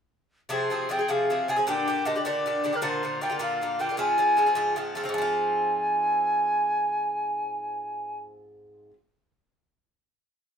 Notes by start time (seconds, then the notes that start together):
0.49 C3 F3 C4 G#4 C5
0.70 C3 F3 C4 G#4
0.89 C3 F3 C4 G#4 G5
0.99 F3 C4 G#4
1.08 C3 F3 C4 G#4 F5
1.30 C3 F3 C4 G#4
1.48 C3 F3 C4 G#4 G#5
1.56 F3 C4 G#4
1.67 A#2 D3 D4 G4 G5
1.87 A#2 D3 D4 G4
2.05 A#2 D3 D4 G4 D#5
2.15 D3 D4 G4
2.25 A#2 D3 D4 G4 D5
2.46 A#2 D3 D4 G4
2.64 A#2 D3 D4 G4
2.73 D3 D4 G4 A#4
2.82 A#2 D3 A#3 F4 C5
3.03 A#2 D3 A#3 F4
3.21 A#2 D3 A#3 F4 G5
3.30 D3 A#3 F4
3.39 A#2 D3 A#3 F4 F5
3.62 A#2 D3 A#3 F4
3.79 A#2 D3 A#3 F4 G5
3.89 D3 A#3 F4
3.97 G#2 F3 C4 F4 G#5
4.18 G#2 F3 C4 F4
4.37 G#2 F3 C4 F4
4.46 F3 C4 F4
4.55 G#2 F3 C4 F4
4.76 G#2 F3 C4 F4
4.95 G#2 F3 C4 F4
5.03 F3 C4 F4
5.09 G#2 G#5
5.14 F3
5.18 C4 F4